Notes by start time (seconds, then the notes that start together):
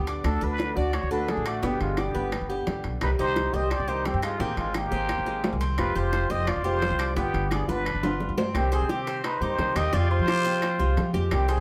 Already playing: D3 G3 B3 G4
0.00 D2
0.07 D4, high bongo, high timbale
0.24 D2 D3 A3 D4 F#4 A4, high bongo, high timbale, claves
0.41 D2 D4 A4 B4, high bongo
0.59 high bongo, high timbale
0.75 D2 A3 D4 F#4 D5
0.93 F#4 C#5, muted nylon-string guitar stroke, high bongo, high timbale, claves
1.03 D2
1.11 A3 D4 F#4 A4 B4, high bongo
1.28 D3 A3 D4 F#4 G#4, high bongo, low bongo, high timbale
1.37 A1
1.46 A3 D4 F#4, high bongo, high timbale, claves
1.62 G1 B2 D3 G3 B3 G4, high bongo
1.81 G1 G#3 F4, high bongo, high timbale
1.97 B3 D4 G4, high bongo, high timbale, claves
2.15 G1 D3 G3 B3 G4 B4
2.32 muted nylon-string guitar stroke, high bongo, high timbale, claves
2.41 G1
2.49 D3 G3 B3 G4, high bongo
2.67 G1 D3 G3 B3 G4, high bongo, low bongo, high timbale
2.84 B1, high bongo, high timbale
3.01 C2 C3 D#3 G3 C4 D#4 G4 B4, high bongo, high timbale, claves
3.19 C2 D#4 G4 C5, high bongo
3.36 high bongo, high timbale
3.52 C2 D#3 G3 C4 G4 C5 D#5
3.70 G4 D5, muted nylon-string guitar stroke, high bongo, high timbale, claves
3.79 C2
3.87 D#3 G3 C4 D#4 G4 C5, high bongo
4.04 D#3 G3 C4 G4, high bongo, low bongo, high timbale
4.14 G2
4.22 G#3 D#4 F4, high bongo, high timbale, claves
4.39 G#1 D#3 G#3 A#3 C4 G4 G#4, high bongo
4.57 G#1 G#3 F4, high bongo, high timbale
4.74 A#3 D#4 G4, high bongo, high timbale, claves
4.91 G#1 G#3 C4 G#4 C5
5.08 muted nylon-string guitar stroke, high bongo, high timbale, claves
5.18 G#1
5.25 G#3 C4 G#4, high bongo
5.43 D#3 G#3 C4 G#4, high bongo, low bongo, high timbale, low timbale
5.53 C2
5.61 C4, high bongo, high timbale
5.77 F1 C3 F3 G#3 C4 F4 G4 B4, high bongo, high timbale, claves
5.95 F1 F4 G4 C5, high bongo
6.13 high bongo, high timbale
6.30 F1 F3 G#3 C4 G4 C5 D#5
6.47 F4 D5, muted nylon-string guitar stroke, high bongo, high timbale, claves
6.56 F1
6.64 F3 G#3 C4 F4 G4 C5, high bongo
6.81 F3 G#3 C4 G4, high bongo, low bongo, high timbale
6.90 C2
6.99 D4, high bongo, high timbale, claves
7.16 G1 G3 B3 F4 G4, high bongo
7.34 G1, high bongo, high timbale
7.50 B3 D4 G#4, high bongo, high timbale, claves
7.68 G1 B3 D4 F4 B4, high bongo
7.85 muted nylon-string guitar stroke, high timbale, claves
7.95 G1
8.03 B3 F4, low bongo, high timbale
8.19 G3 B3 F4, low bongo
8.29 G2
8.38 C4, low bongo, low timbale
8.54 C2 C3 D#3 G3 C4 G4, high bongo, high timbale, claves
8.72 C4 G#4 C5, high bongo, high timbale
8.81 C3
8.89 C4 G4, high bongo
9.07 C5, high bongo, high timbale
9.24 D#4 B4, muted nylon-string guitar stroke, high bongo, high timbale, claves
9.40 G2 D#3 G3 C4 D#4 G4 C5, high bongo
9.58 C3 D#3 G3 C4 G4, high bongo, low bongo, high timbale
9.75 D#2 D#3 G3 C4 G4 D#5, high timbale, claves
9.92 F2 C3 F3 G#3 C4 F4 G4 D5, high bongo
10.10 F4 C5, high bongo
10.19 F3
10.27 G4, high bongo, high timbale, claves
10.45 C4, high bongo
10.62 muted nylon-string guitar stroke, high bongo, high timbale, claves
10.79 C2 F3 G#3 C4 F4 G4, high bongo
10.96 F3 G#3 C4 G4, high bongo, low bongo, high timbale
11.13 F2 F3 G#3 C4 G4
11.30 C2 C3 D#3 G3 C4 G4, high bongo, high timbale, claves
11.48 C4 G#4 C5, high bongo, high timbale